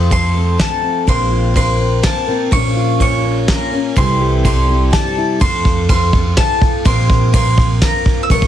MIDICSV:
0, 0, Header, 1, 6, 480
1, 0, Start_track
1, 0, Tempo, 481541
1, 1078, Time_signature, 3, 2, 24, 8
1, 8447, End_track
2, 0, Start_track
2, 0, Title_t, "Mandolin"
2, 0, Program_c, 0, 25
2, 0, Note_on_c, 0, 84, 73
2, 112, Note_off_c, 0, 84, 0
2, 124, Note_on_c, 0, 84, 69
2, 568, Note_off_c, 0, 84, 0
2, 608, Note_on_c, 0, 81, 66
2, 1082, Note_off_c, 0, 81, 0
2, 1086, Note_on_c, 0, 84, 82
2, 1529, Note_off_c, 0, 84, 0
2, 1563, Note_on_c, 0, 84, 74
2, 2038, Note_off_c, 0, 84, 0
2, 2042, Note_on_c, 0, 81, 68
2, 2517, Note_off_c, 0, 81, 0
2, 2521, Note_on_c, 0, 85, 90
2, 2998, Note_off_c, 0, 85, 0
2, 3010, Note_on_c, 0, 85, 81
2, 3482, Note_off_c, 0, 85, 0
2, 3486, Note_on_c, 0, 82, 73
2, 3960, Note_off_c, 0, 82, 0
2, 3964, Note_on_c, 0, 84, 82
2, 4426, Note_off_c, 0, 84, 0
2, 4438, Note_on_c, 0, 84, 83
2, 4908, Note_off_c, 0, 84, 0
2, 4912, Note_on_c, 0, 81, 73
2, 5388, Note_off_c, 0, 81, 0
2, 5392, Note_on_c, 0, 84, 89
2, 5867, Note_off_c, 0, 84, 0
2, 5879, Note_on_c, 0, 84, 78
2, 6351, Note_off_c, 0, 84, 0
2, 6355, Note_on_c, 0, 81, 73
2, 6832, Note_off_c, 0, 81, 0
2, 6836, Note_on_c, 0, 84, 90
2, 7302, Note_off_c, 0, 84, 0
2, 7314, Note_on_c, 0, 84, 85
2, 7799, Note_off_c, 0, 84, 0
2, 7803, Note_on_c, 0, 82, 84
2, 8199, Note_off_c, 0, 82, 0
2, 8203, Note_on_c, 0, 88, 67
2, 8275, Note_off_c, 0, 88, 0
2, 8286, Note_on_c, 0, 85, 95
2, 8447, Note_off_c, 0, 85, 0
2, 8447, End_track
3, 0, Start_track
3, 0, Title_t, "Steel-string acoustic guitar"
3, 0, Program_c, 1, 25
3, 0, Note_on_c, 1, 65, 45
3, 0, Note_on_c, 1, 69, 45
3, 110, Note_off_c, 1, 69, 0
3, 360, Note_on_c, 1, 60, 48
3, 823, Note_off_c, 1, 60, 0
3, 835, Note_on_c, 1, 60, 48
3, 1061, Note_on_c, 1, 46, 49
3, 1305, Note_off_c, 1, 65, 0
3, 1309, Note_on_c, 1, 65, 48
3, 1559, Note_on_c, 1, 72, 58
3, 1788, Note_off_c, 1, 60, 0
3, 1800, Note_on_c, 1, 60, 49
3, 2265, Note_off_c, 1, 60, 0
3, 2481, Note_off_c, 1, 46, 0
3, 2485, Note_off_c, 1, 65, 0
3, 2490, Note_off_c, 1, 72, 0
3, 2754, Note_on_c, 1, 65, 53
3, 2997, Note_on_c, 1, 73, 69
3, 3237, Note_on_c, 1, 61, 52
3, 3707, Note_off_c, 1, 61, 0
3, 3927, Note_off_c, 1, 65, 0
3, 3928, Note_off_c, 1, 73, 0
3, 3977, Note_on_c, 1, 67, 49
3, 4186, Note_off_c, 1, 67, 0
3, 4198, Note_on_c, 1, 67, 58
3, 5164, Note_on_c, 1, 64, 56
3, 5368, Note_off_c, 1, 67, 0
3, 5372, Note_off_c, 1, 64, 0
3, 8447, End_track
4, 0, Start_track
4, 0, Title_t, "Twelve-string acoustic guitar"
4, 0, Program_c, 2, 25
4, 0, Note_on_c, 2, 53, 60
4, 0, Note_on_c, 2, 60, 68
4, 0, Note_on_c, 2, 65, 70
4, 0, Note_on_c, 2, 69, 58
4, 97, Note_on_c, 2, 57, 47
4, 109, Note_off_c, 2, 60, 0
4, 113, Note_on_c, 2, 60, 47
4, 119, Note_off_c, 2, 65, 0
4, 119, Note_off_c, 2, 69, 0
4, 123, Note_on_c, 2, 65, 46
4, 131, Note_on_c, 2, 69, 51
4, 568, Note_off_c, 2, 57, 0
4, 580, Note_on_c, 2, 57, 48
4, 581, Note_off_c, 2, 60, 0
4, 593, Note_on_c, 2, 60, 43
4, 598, Note_off_c, 2, 65, 0
4, 600, Note_off_c, 2, 69, 0
4, 602, Note_on_c, 2, 65, 47
4, 612, Note_on_c, 2, 69, 53
4, 1061, Note_off_c, 2, 57, 0
4, 1063, Note_off_c, 2, 60, 0
4, 1065, Note_on_c, 2, 58, 71
4, 1075, Note_off_c, 2, 65, 0
4, 1075, Note_on_c, 2, 60, 72
4, 1079, Note_on_c, 2, 65, 62
4, 1082, Note_off_c, 2, 69, 0
4, 1086, Note_on_c, 2, 70, 74
4, 1531, Note_off_c, 2, 58, 0
4, 1535, Note_on_c, 2, 58, 50
4, 1537, Note_off_c, 2, 60, 0
4, 1549, Note_on_c, 2, 60, 54
4, 1555, Note_off_c, 2, 65, 0
4, 1559, Note_on_c, 2, 65, 53
4, 1565, Note_off_c, 2, 70, 0
4, 1569, Note_on_c, 2, 70, 51
4, 2005, Note_off_c, 2, 58, 0
4, 2017, Note_on_c, 2, 58, 53
4, 2020, Note_off_c, 2, 60, 0
4, 2030, Note_off_c, 2, 65, 0
4, 2032, Note_on_c, 2, 60, 51
4, 2041, Note_off_c, 2, 70, 0
4, 2042, Note_on_c, 2, 65, 53
4, 2053, Note_on_c, 2, 70, 50
4, 2252, Note_off_c, 2, 70, 0
4, 2264, Note_on_c, 2, 70, 40
4, 2268, Note_off_c, 2, 58, 0
4, 2273, Note_off_c, 2, 65, 0
4, 2275, Note_off_c, 2, 60, 0
4, 2285, Note_on_c, 2, 65, 42
4, 2297, Note_on_c, 2, 60, 34
4, 2502, Note_on_c, 2, 46, 71
4, 2509, Note_off_c, 2, 53, 0
4, 2509, Note_off_c, 2, 65, 0
4, 2511, Note_off_c, 2, 70, 0
4, 2513, Note_on_c, 2, 53, 66
4, 2518, Note_off_c, 2, 60, 0
4, 2518, Note_on_c, 2, 58, 66
4, 2521, Note_on_c, 2, 65, 79
4, 2522, Note_on_c, 2, 61, 84
4, 2530, Note_on_c, 2, 70, 82
4, 2973, Note_off_c, 2, 58, 0
4, 2983, Note_off_c, 2, 61, 0
4, 2985, Note_on_c, 2, 58, 45
4, 2990, Note_off_c, 2, 46, 0
4, 2995, Note_off_c, 2, 53, 0
4, 2995, Note_on_c, 2, 61, 53
4, 2996, Note_off_c, 2, 65, 0
4, 3004, Note_off_c, 2, 70, 0
4, 3008, Note_on_c, 2, 65, 59
4, 3016, Note_on_c, 2, 70, 53
4, 3454, Note_off_c, 2, 58, 0
4, 3463, Note_off_c, 2, 61, 0
4, 3466, Note_on_c, 2, 58, 48
4, 3474, Note_off_c, 2, 65, 0
4, 3475, Note_on_c, 2, 61, 52
4, 3486, Note_on_c, 2, 65, 57
4, 3487, Note_off_c, 2, 70, 0
4, 3497, Note_on_c, 2, 70, 56
4, 3688, Note_off_c, 2, 70, 0
4, 3700, Note_on_c, 2, 70, 42
4, 3702, Note_off_c, 2, 65, 0
4, 3712, Note_off_c, 2, 58, 0
4, 3713, Note_on_c, 2, 65, 36
4, 3716, Note_off_c, 2, 61, 0
4, 3728, Note_on_c, 2, 61, 37
4, 3736, Note_on_c, 2, 58, 34
4, 3944, Note_on_c, 2, 48, 75
4, 3949, Note_off_c, 2, 70, 0
4, 3950, Note_on_c, 2, 52, 75
4, 3951, Note_off_c, 2, 58, 0
4, 3955, Note_off_c, 2, 61, 0
4, 3955, Note_on_c, 2, 55, 74
4, 3956, Note_off_c, 2, 65, 0
4, 3959, Note_on_c, 2, 60, 71
4, 3965, Note_on_c, 2, 64, 70
4, 3969, Note_on_c, 2, 69, 71
4, 4412, Note_off_c, 2, 55, 0
4, 4424, Note_on_c, 2, 55, 46
4, 4430, Note_off_c, 2, 48, 0
4, 4431, Note_off_c, 2, 60, 0
4, 4434, Note_off_c, 2, 52, 0
4, 4435, Note_on_c, 2, 60, 49
4, 4436, Note_off_c, 2, 64, 0
4, 4448, Note_on_c, 2, 64, 58
4, 4453, Note_off_c, 2, 69, 0
4, 4457, Note_on_c, 2, 69, 61
4, 4647, Note_off_c, 2, 69, 0
4, 4659, Note_on_c, 2, 69, 35
4, 4664, Note_off_c, 2, 64, 0
4, 4670, Note_off_c, 2, 60, 0
4, 4671, Note_off_c, 2, 55, 0
4, 4676, Note_on_c, 2, 64, 33
4, 4682, Note_on_c, 2, 60, 30
4, 4694, Note_on_c, 2, 55, 28
4, 4879, Note_off_c, 2, 55, 0
4, 4891, Note_on_c, 2, 55, 53
4, 4894, Note_off_c, 2, 60, 0
4, 4905, Note_off_c, 2, 64, 0
4, 4906, Note_on_c, 2, 60, 50
4, 4908, Note_off_c, 2, 69, 0
4, 4917, Note_on_c, 2, 64, 57
4, 4925, Note_on_c, 2, 69, 55
4, 5380, Note_on_c, 2, 53, 64
4, 5384, Note_off_c, 2, 55, 0
4, 5390, Note_off_c, 2, 60, 0
4, 5390, Note_on_c, 2, 57, 74
4, 5392, Note_off_c, 2, 64, 0
4, 5394, Note_on_c, 2, 60, 78
4, 5395, Note_off_c, 2, 69, 0
4, 5396, Note_on_c, 2, 65, 69
4, 5407, Note_on_c, 2, 69, 74
4, 5856, Note_off_c, 2, 57, 0
4, 5868, Note_on_c, 2, 57, 56
4, 5875, Note_off_c, 2, 60, 0
4, 5879, Note_on_c, 2, 60, 49
4, 5882, Note_off_c, 2, 69, 0
4, 5888, Note_off_c, 2, 65, 0
4, 5892, Note_on_c, 2, 65, 55
4, 5899, Note_on_c, 2, 69, 57
4, 6098, Note_off_c, 2, 69, 0
4, 6110, Note_on_c, 2, 69, 38
4, 6112, Note_off_c, 2, 57, 0
4, 6118, Note_off_c, 2, 60, 0
4, 6118, Note_off_c, 2, 65, 0
4, 6130, Note_on_c, 2, 65, 37
4, 6141, Note_on_c, 2, 60, 35
4, 6349, Note_off_c, 2, 60, 0
4, 6349, Note_on_c, 2, 57, 53
4, 6353, Note_off_c, 2, 69, 0
4, 6359, Note_off_c, 2, 65, 0
4, 6361, Note_on_c, 2, 60, 57
4, 6371, Note_on_c, 2, 65, 64
4, 6385, Note_on_c, 2, 69, 55
4, 6822, Note_off_c, 2, 57, 0
4, 6826, Note_off_c, 2, 60, 0
4, 6826, Note_on_c, 2, 58, 75
4, 6838, Note_off_c, 2, 65, 0
4, 6838, Note_on_c, 2, 60, 78
4, 6842, Note_on_c, 2, 65, 78
4, 6846, Note_off_c, 2, 69, 0
4, 6850, Note_on_c, 2, 70, 84
4, 7299, Note_off_c, 2, 58, 0
4, 7303, Note_on_c, 2, 58, 58
4, 7305, Note_off_c, 2, 60, 0
4, 7317, Note_on_c, 2, 60, 52
4, 7325, Note_off_c, 2, 65, 0
4, 7329, Note_on_c, 2, 65, 63
4, 7330, Note_off_c, 2, 70, 0
4, 7334, Note_on_c, 2, 70, 62
4, 7777, Note_off_c, 2, 58, 0
4, 7787, Note_off_c, 2, 60, 0
4, 7789, Note_on_c, 2, 58, 54
4, 7798, Note_off_c, 2, 65, 0
4, 7799, Note_on_c, 2, 60, 57
4, 7806, Note_off_c, 2, 70, 0
4, 7810, Note_on_c, 2, 65, 57
4, 7819, Note_on_c, 2, 70, 64
4, 8273, Note_off_c, 2, 58, 0
4, 8273, Note_on_c, 2, 46, 80
4, 8274, Note_off_c, 2, 53, 0
4, 8278, Note_off_c, 2, 60, 0
4, 8278, Note_off_c, 2, 65, 0
4, 8278, Note_on_c, 2, 53, 82
4, 8280, Note_off_c, 2, 70, 0
4, 8284, Note_on_c, 2, 58, 89
4, 8287, Note_on_c, 2, 61, 86
4, 8290, Note_on_c, 2, 65, 91
4, 8292, Note_on_c, 2, 70, 88
4, 8447, Note_off_c, 2, 46, 0
4, 8447, Note_off_c, 2, 53, 0
4, 8447, Note_off_c, 2, 58, 0
4, 8447, Note_off_c, 2, 61, 0
4, 8447, Note_off_c, 2, 65, 0
4, 8447, Note_off_c, 2, 70, 0
4, 8447, End_track
5, 0, Start_track
5, 0, Title_t, "Upright bass"
5, 0, Program_c, 3, 32
5, 0, Note_on_c, 3, 41, 61
5, 556, Note_off_c, 3, 41, 0
5, 1071, Note_on_c, 3, 34, 71
5, 1995, Note_off_c, 3, 34, 0
5, 2511, Note_on_c, 3, 34, 69
5, 3434, Note_off_c, 3, 34, 0
5, 3954, Note_on_c, 3, 36, 79
5, 4875, Note_off_c, 3, 36, 0
5, 5393, Note_on_c, 3, 41, 85
5, 6315, Note_off_c, 3, 41, 0
5, 6833, Note_on_c, 3, 34, 85
5, 7755, Note_off_c, 3, 34, 0
5, 8275, Note_on_c, 3, 34, 82
5, 8447, Note_off_c, 3, 34, 0
5, 8447, End_track
6, 0, Start_track
6, 0, Title_t, "Drums"
6, 112, Note_on_c, 9, 36, 43
6, 112, Note_on_c, 9, 51, 47
6, 211, Note_off_c, 9, 51, 0
6, 212, Note_off_c, 9, 36, 0
6, 592, Note_on_c, 9, 38, 58
6, 592, Note_on_c, 9, 51, 43
6, 593, Note_on_c, 9, 36, 41
6, 692, Note_off_c, 9, 36, 0
6, 692, Note_off_c, 9, 38, 0
6, 692, Note_off_c, 9, 51, 0
6, 1073, Note_on_c, 9, 36, 49
6, 1075, Note_on_c, 9, 51, 45
6, 1172, Note_off_c, 9, 36, 0
6, 1175, Note_off_c, 9, 51, 0
6, 1553, Note_on_c, 9, 36, 52
6, 1556, Note_on_c, 9, 51, 48
6, 1652, Note_off_c, 9, 36, 0
6, 1655, Note_off_c, 9, 51, 0
6, 2026, Note_on_c, 9, 38, 68
6, 2026, Note_on_c, 9, 51, 47
6, 2031, Note_on_c, 9, 36, 44
6, 2126, Note_off_c, 9, 38, 0
6, 2126, Note_off_c, 9, 51, 0
6, 2131, Note_off_c, 9, 36, 0
6, 2510, Note_on_c, 9, 51, 56
6, 2511, Note_on_c, 9, 36, 54
6, 2610, Note_off_c, 9, 51, 0
6, 2611, Note_off_c, 9, 36, 0
6, 2991, Note_on_c, 9, 51, 53
6, 2992, Note_on_c, 9, 36, 52
6, 3091, Note_off_c, 9, 51, 0
6, 3092, Note_off_c, 9, 36, 0
6, 3470, Note_on_c, 9, 38, 70
6, 3470, Note_on_c, 9, 51, 51
6, 3472, Note_on_c, 9, 36, 56
6, 3569, Note_off_c, 9, 38, 0
6, 3569, Note_off_c, 9, 51, 0
6, 3572, Note_off_c, 9, 36, 0
6, 3952, Note_on_c, 9, 36, 62
6, 3952, Note_on_c, 9, 51, 51
6, 4052, Note_off_c, 9, 36, 0
6, 4052, Note_off_c, 9, 51, 0
6, 4434, Note_on_c, 9, 36, 61
6, 4434, Note_on_c, 9, 51, 55
6, 4534, Note_off_c, 9, 36, 0
6, 4534, Note_off_c, 9, 51, 0
6, 4913, Note_on_c, 9, 36, 66
6, 4914, Note_on_c, 9, 38, 66
6, 4914, Note_on_c, 9, 51, 49
6, 5013, Note_off_c, 9, 36, 0
6, 5014, Note_off_c, 9, 38, 0
6, 5014, Note_off_c, 9, 51, 0
6, 5393, Note_on_c, 9, 36, 67
6, 5393, Note_on_c, 9, 51, 58
6, 5493, Note_off_c, 9, 36, 0
6, 5493, Note_off_c, 9, 51, 0
6, 5633, Note_on_c, 9, 36, 74
6, 5733, Note_off_c, 9, 36, 0
6, 5871, Note_on_c, 9, 51, 54
6, 5874, Note_on_c, 9, 36, 73
6, 5970, Note_off_c, 9, 51, 0
6, 5973, Note_off_c, 9, 36, 0
6, 6112, Note_on_c, 9, 36, 75
6, 6212, Note_off_c, 9, 36, 0
6, 6348, Note_on_c, 9, 38, 64
6, 6348, Note_on_c, 9, 51, 50
6, 6353, Note_on_c, 9, 36, 79
6, 6448, Note_off_c, 9, 38, 0
6, 6448, Note_off_c, 9, 51, 0
6, 6453, Note_off_c, 9, 36, 0
6, 6595, Note_on_c, 9, 36, 82
6, 6694, Note_off_c, 9, 36, 0
6, 6831, Note_on_c, 9, 51, 66
6, 6833, Note_on_c, 9, 36, 84
6, 6930, Note_off_c, 9, 51, 0
6, 6933, Note_off_c, 9, 36, 0
6, 7074, Note_on_c, 9, 36, 85
6, 7174, Note_off_c, 9, 36, 0
6, 7312, Note_on_c, 9, 51, 60
6, 7313, Note_on_c, 9, 36, 84
6, 7411, Note_off_c, 9, 51, 0
6, 7413, Note_off_c, 9, 36, 0
6, 7553, Note_on_c, 9, 36, 81
6, 7652, Note_off_c, 9, 36, 0
6, 7792, Note_on_c, 9, 36, 93
6, 7792, Note_on_c, 9, 38, 74
6, 7792, Note_on_c, 9, 51, 63
6, 7892, Note_off_c, 9, 36, 0
6, 7892, Note_off_c, 9, 38, 0
6, 7892, Note_off_c, 9, 51, 0
6, 8033, Note_on_c, 9, 36, 83
6, 8132, Note_off_c, 9, 36, 0
6, 8273, Note_on_c, 9, 36, 83
6, 8276, Note_on_c, 9, 51, 58
6, 8373, Note_off_c, 9, 36, 0
6, 8376, Note_off_c, 9, 51, 0
6, 8394, Note_on_c, 9, 36, 101
6, 8447, Note_off_c, 9, 36, 0
6, 8447, End_track
0, 0, End_of_file